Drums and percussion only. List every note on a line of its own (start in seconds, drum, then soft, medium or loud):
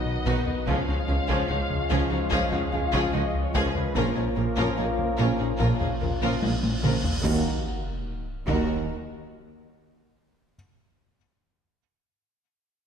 0.26 taiko medium
0.47 taiko low medium
0.67 taiko loud
1.29 taiko medium
1.70 taiko low medium
2.32 taiko medium
2.52 taiko low medium
2.73 taiko low medium
2.94 taiko medium
3.55 taiko medium
3.75 taiko low medium
3.96 taiko loud
4.57 taiko medium
4.99 taiko low medium
5.60 taiko medium
5.81 taiko low medium
6.01 taiko low medium
6.22 taiko medium
6.42 taiko high medium
6.63 taiko high medium
6.84 taiko mid medium
7.04 taiko low loud
7.25 taiko loud
8.48 taiko loud